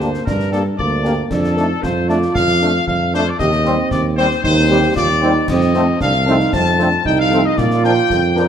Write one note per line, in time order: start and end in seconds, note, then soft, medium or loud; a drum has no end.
0.00 0.18 D2 medium
0.00 0.22 A#3 medium
0.00 0.10 A#3 medium
0.00 0.10 D4 medium
0.00 0.10 G4 medium
0.00 0.22 C5 medium
0.00 snare medium
0.14 snare medium
0.26 0.70 G2 medium
0.26 0.75 D4 medium
0.26 0.51 A#4 medium
0.26 concert bass drum medium
0.26 snare medium
0.40 snare medium
0.51 0.61 A#3 medium
0.51 0.62 A#3 medium
0.51 0.62 D4 medium
0.51 0.62 G4 medium
0.51 0.64 A4 medium
0.51 snare medium
0.77 1.22 D2 medium
0.77 1.28 A#3 medium
0.77 1.26 D5 loud
0.77 concert bass drum medium
1.03 1.13 A#3 medium
1.03 1.15 A#3 medium
1.03 1.13 D4 medium
1.03 1.15 D4 medium
1.03 1.14 G4 medium
1.03 snare medium
1.30 1.74 F2 loud
1.30 1.56 D4 medium
1.30 1.83 A4 loud
1.30 concert bass drum medium
1.30 snare medium
1.30 crash soft
1.44 snare medium
1.57 1.67 A3 medium
1.57 1.66 A3 medium
1.57 1.66 D4 medium
1.57 1.67 D4 medium
1.57 1.70 D#4 medium
1.57 1.67 A4 medium
1.57 snare medium
1.82 2.27 F2 medium
1.82 3.36 F4 loud
1.82 2.09 C5 loud
1.82 concert bass drum medium
1.82 snare medium
2.09 2.18 A3 medium
2.09 2.18 D4 medium
2.09 2.19 D4 medium
2.09 2.18 A4 medium
2.09 2.35 D5 medium
2.09 snare medium
2.22 snare medium
2.35 2.79 F2 medium
2.35 2.84 F5 loud
2.35 concert bass drum medium
2.35 snare medium
2.48 snare medium
2.61 2.71 A3 medium
2.61 2.71 D4 medium
2.61 2.71 A4 medium
2.61 snare medium
2.87 3.31 F2 medium
2.87 3.12 F5 loud
2.87 concert bass drum medium
3.14 3.23 A3 medium
3.14 3.24 A3 medium
3.14 3.23 D4 medium
3.14 3.24 A4 medium
3.14 3.26 C5 loud
3.14 snare medium
3.28 3.41 D5 medium
3.39 3.78 D#2 loud
3.39 3.52 G4 loud
3.39 3.88 D#5 loud
3.39 concert bass drum medium
3.39 snare medium
3.52 snare medium
3.65 3.74 G3 medium
3.65 3.77 G3 medium
3.65 3.74 C4 medium
3.65 4.14 C4 loud
3.65 3.77 C4 medium
3.65 3.77 C5 medium
3.65 snare medium
3.91 4.36 D#2 medium
3.91 4.03 D5 loud
3.91 concert bass drum medium
3.91 snare medium
4.17 4.27 G3 loud
4.17 4.28 G3 medium
4.17 4.27 C4 medium
4.17 4.28 C4 medium
4.17 4.42 C5 loud
4.17 4.28 C5 medium
4.17 snare medium
4.31 snare medium
4.43 4.88 D#2 loud
4.43 4.69 D#4 loud
4.43 4.92 C5 loud
4.43 concert bass drum medium
4.43 snare medium
4.68 4.78 G3 medium
4.68 4.80 G3 medium
4.68 4.79 C4 medium
4.68 4.80 C4 medium
4.68 4.95 G4 loud
4.68 4.80 C5 medium
4.96 5.40 D#2 medium
4.96 5.08 F4 loud
4.96 5.45 D5 loud
4.96 concert bass drum medium
4.96 snare medium
5.22 5.32 G3 medium
5.22 5.31 C4 medium
5.22 5.33 C4 medium
5.22 5.47 D#4 medium
5.22 5.32 C5 medium
5.48 5.93 F2 loud
5.48 5.98 C4 loud
5.48 6.01 D#5 loud
5.48 concert bass drum medium
5.48 snare medium
5.48 crash medium
5.61 snare medium
5.74 5.85 F3 medium
5.74 5.84 A3 medium
5.74 5.83 C4 medium
5.74 5.85 C4 medium
5.74 5.85 A4 medium
5.74 snare medium
6.01 6.45 C2 loud
6.01 6.13 D4 loud
6.01 6.50 F5 loud
6.01 concert bass drum medium
6.01 snare medium
6.27 6.37 F3 medium
6.27 6.36 A3 loud
6.27 6.36 C4 medium
6.27 6.37 C4 medium
6.27 6.55 D#4 loud
6.27 6.36 A4 medium
6.27 snare medium
6.40 snare medium
6.53 6.97 F2 loud
6.53 6.79 C4 medium
6.53 7.02 A5 loud
6.53 concert bass drum medium
6.53 snare medium
6.66 snare medium
6.79 6.88 F3 medium
6.79 6.88 A3 medium
6.79 6.88 C4 medium
6.79 6.92 D4 medium
6.79 6.89 A4 medium
6.79 snare medium
7.05 7.49 C2 medium
7.05 7.54 D#4 loud
7.05 7.18 G5 loud
7.05 concert bass drum medium
7.19 7.43 F5 loud
7.31 7.41 F3 medium
7.31 7.42 A3 medium
7.31 7.41 C4 medium
7.31 7.42 C4 medium
7.31 7.41 A4 medium
7.31 snare medium
7.44 7.58 D#5 loud
7.57 8.01 A#2 loud
7.57 8.48 F4 loud
7.57 7.84 D5 loud
7.57 concert bass drum medium
7.57 snare medium
7.71 snare medium
7.83 7.93 F3 medium
7.83 7.94 F3 medium
7.83 7.93 D4 medium
7.83 7.94 D4 medium
7.83 7.93 A#4 medium
7.83 8.48 G5 loud
7.83 snare medium
8.10 8.48 F2 medium
8.10 concert bass drum medium
8.10 snare medium
8.35 8.45 F3 medium
8.35 8.46 F3 medium
8.35 8.45 D4 medium
8.35 8.46 A#4 medium
8.35 snare medium